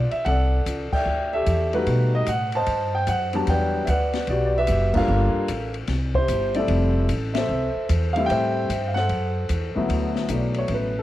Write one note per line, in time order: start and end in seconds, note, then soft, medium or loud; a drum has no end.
0.11 0.25 E5 medium
0.11 muted upright bass stroke soft
0.11 ride soft
0.25 0.65 C2 medium
0.25 1.03 A4 medium
0.25 0.93 D5 medium
0.25 0.94 F#5 medium
0.25 kick soft
0.25 ride medium
0.66 0.90 C#2 medium
0.66 kick soft
0.66 hi-hat pedal medium
0.66 ride medium
0.92 1.70 D5 medium
0.92 1.32 E5 medium
0.92 1.30 G5 medium
0.92 muted upright bass stroke soft
0.92 kick medium
0.92 crash medium
1.06 1.45 D2 medium
1.33 1.84 G4 medium
1.33 1.84 A4 medium
1.33 1.71 E5 loud
1.46 1.86 E2 medium
1.46 kick soft
1.46 hi-hat pedal medium
1.46 ride medium
1.73 2.25 G3 medium
1.73 2.25 A3 medium
1.73 2.25 D#4 medium
1.73 2.26 F#4 medium
1.73 2.11 B4 medium
1.73 ride soft
1.87 2.26 B2 medium
1.87 kick soft
1.87 ride medium
2.15 2.29 D#5 medium
2.26 2.66 A2 medium
2.26 2.55 F#5 medium
2.26 kick soft
2.26 hi-hat pedal soft
2.26 ride medium
2.52 2.96 A5 loud
2.52 ride soft
2.56 3.32 C5 medium
2.56 3.32 D#5 medium
2.66 3.06 G2 medium
2.66 kick soft
2.66 ride medium
2.95 3.09 G5 medium
3.07 3.47 F#2 medium
3.07 3.33 F#5 medium
3.07 kick soft
3.07 hi-hat pedal medium
3.07 ride medium
3.33 3.86 F#3 medium
3.33 3.85 G3 medium
3.33 3.85 B3 medium
3.33 3.86 D4 medium
3.33 3.40 A5 medium
3.33 ride soft
3.47 3.87 E2 medium
3.47 3.89 B4 medium
3.47 3.88 D5 medium
3.47 3.85 G5 medium
3.47 kick soft
3.47 ride medium
3.85 4.27 D2 medium
3.85 3.89 E5 medium
3.85 kick soft
3.85 hi-hat pedal soft
3.85 ride medium
3.89 4.57 B4 medium
3.89 4.28 D5 medium
3.89 4.30 F#5 medium
4.13 snare medium
4.13 ride soft
4.27 4.67 B1 medium
4.27 5.06 F#4 medium
4.27 4.57 G4 medium
4.27 4.44 D5 medium
4.27 kick soft
4.27 ride medium
4.46 4.55 D5 medium
4.58 5.07 G4 medium
4.58 5.07 B4 medium
4.58 4.94 E5 loud
4.67 5.07 F#1 medium
4.67 kick soft
4.67 hi-hat pedal medium
4.67 ride medium
4.93 5.45 G3 medium
4.93 5.46 A#3 medium
4.93 5.46 D4 medium
4.93 5.46 F4 medium
4.93 kick medium
4.93 crash medium
4.97 5.73 A4 medium
4.97 5.73 A#4 medium
4.97 5.72 F5 loud
5.08 5.33 G1 loud
5.34 muted upright bass stroke soft
5.48 5.87 A1 medium
5.48 kick soft
5.48 hi-hat pedal medium
5.48 ride medium
5.74 ride soft
5.87 6.27 C2 medium
5.87 kick soft
5.87 snare soft
5.87 ride medium
6.15 6.55 E4 medium
6.15 6.67 G4 medium
6.15 6.52 C5 medium
6.15 kick medium
6.28 6.67 G1 medium
6.28 kick soft
6.28 hi-hat pedal medium
6.28 ride medium
6.54 7.06 G3 medium
6.54 7.07 A3 medium
6.54 7.07 C4 medium
6.54 7.07 E4 medium
6.54 7.33 A4 medium
6.54 7.06 D5 medium
6.54 ride soft
6.68 7.08 F1 loud
6.68 kick soft
6.68 ride medium
7.09 7.48 A1 medium
7.09 kick soft
7.09 hi-hat pedal soft
7.09 ride medium
7.34 7.85 E5 medium
7.34 snare medium
7.34 ride medium
7.38 8.13 A4 medium
7.38 8.13 C5 medium
7.49 7.73 C2 medium
7.75 muted upright bass stroke soft
7.89 8.28 E2 loud
7.89 kick soft
7.89 hi-hat pedal medium
7.89 ride medium
8.13 8.67 G3 medium
8.13 8.67 A3 medium
8.13 8.67 C4 medium
8.13 8.29 F5 loud
8.13 ride soft
8.17 8.68 E4 medium
8.26 8.68 A2 medium
8.26 8.86 G5 loud
8.26 kick soft
8.26 ride medium
8.31 8.96 C5 medium
8.31 9.06 E5 medium
8.69 9.08 G2 medium
8.69 kick soft
8.69 hi-hat pedal medium
8.69 ride medium
8.88 8.96 F5 medium
8.94 9.73 C5 medium
8.94 9.71 F#5 loud
8.94 snare soft
8.98 9.73 A4 medium
9.09 9.48 F#2 medium
9.09 kick soft
9.09 ride medium
9.49 9.74 E2 medium
9.49 kick soft
9.49 hi-hat pedal medium
9.49 ride medium
9.75 10.26 D2 medium
9.75 10.27 F#3 medium
9.75 10.27 A3 medium
9.75 10.27 B3 medium
9.75 10.27 E4 medium
9.75 muted upright bass stroke soft
9.89 10.28 D2 medium
9.89 kick soft
9.89 ride medium
10.16 snare soft
10.29 10.68 B1 medium
10.29 10.90 F#3 soft
10.29 10.90 A3 soft
10.29 10.91 B3 soft
10.29 10.91 E4 medium
10.29 kick soft
10.29 hi-hat pedal medium
10.29 ride medium
10.34 10.57 D5 medium
10.54 ride soft
10.58 10.70 C#5 medium
10.68 11.02 A1 medium
10.68 kick soft
10.68 ride medium
10.74 10.97 B4 medium
10.99 11.02 A4 medium